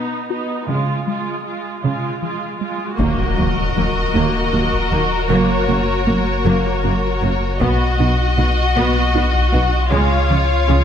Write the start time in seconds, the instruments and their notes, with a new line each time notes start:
Already playing: cello section B2, viola section B3 D#4, synth arpeggio sound D#4
0.30 viola section B3 D#4, synth arpeggio sound F#4
0.69 cello section C#3, synth arpeggio sound C#3, viola section G#3 F4
1.07 synth arpeggio sound G#3, viola section G#3 F4
1.46 viola section G#3 F4
1.84 cello section C#3, synth arpeggio sound C#3, viola section G#3 F4
2.22 synth arpeggio sound F3, viola section G#3 F4
2.61 viola section G#3 F4, synth arpeggio sound G#3
2.99 sub bass D#1, double bass section D#2, cello section D#2, synth arpeggio sound D#3, viola section A#3 F#4, violin section A#4 D#5, taiko, impact
3.38 cello section D#2, double bass section D#2, synth arpeggio sound F#3, viola section A#3
3.76 cello section D#2, double bass section D#2, synth arpeggio sound F#3, viola section A#3
4.15 double bass section D#2, cello section D#2, synth arpeggio sound D#3, viola section A#3
4.53 double bass section D#2, cello section D#2, synth arpeggio sound F#3, viola section A#3
4.73 taiko
4.92 double bass section D#2, cello section D#2, synth arpeggio sound F#3, viola section A#3
5.30 sub bass F#1, double bass section F#1, cello section F#2, synth arpeggio sound F#3, viola section A#3, violin section C#5
5.69 double bass section F#1, cello section F#2, synth arpeggio sound A#3, viola section A#3
6.07 double bass section F#1, cello section F#2, synth arpeggio sound A#3, viola section A#3
6.45 double bass section F#1, cello section F#2, synth arpeggio sound F#3, viola section A#3
6.84 double bass section F#1, cello section F#2, viola section A#3, synth arpeggio sound A#3
7.22 double bass section F#1, cello section F#2, viola section A#3, synth arpeggio sound A#3
7.61 sub bass B1, double bass section B1, cello section B2, viola section B3 F#4, synth arpeggio sound B3, violin section F#4 D#5, taiko
7.99 double bass section B1, cello section B2, viola section B3, synth arpeggio sound D#4
8.38 double bass section B1, cello section B2, viola section B3, synth arpeggio sound D#4
8.76 double bass section B1, cello section B2, synth arpeggio sound B3, viola section B3
9.15 double bass section B1, cello section B2, viola section B3, synth arpeggio sound D#4
9.35 taiko
9.53 double bass section B1, cello section B2, viola section B3, synth arpeggio sound D#4
9.91 sub bass C#2, double bass section C#2, cello section C#3, synth arpeggio sound C#3, viola section G#3 F4, violin section C#5 F5
10.30 double bass section C#2, cello section C#3, synth arpeggio sound F3, viola section G#3
10.69 double bass section C#2, cello section C#3, synth arpeggio sound F3, viola section G#3